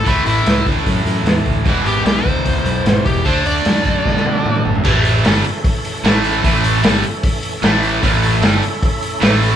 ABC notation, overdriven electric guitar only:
X:1
M:4/4
L:1/8
Q:1/4=151
K:Dlyd
V:1 name="Overdriven electric guitar" clef=bass
[A,,E,A,]8 | [E,,B,,E,]8 | [D,A,D]8 | [K:Amix] [A,,E,A,]2 [G,,D,G,] z3 [A,,E,A,]2 |
[A,,E,A,]2 [G,,D,G,] z3 [A,,E,A,]2 | [A,,E,A,]2 [G,,D,G,] z3 [A,,E,A,]2 |]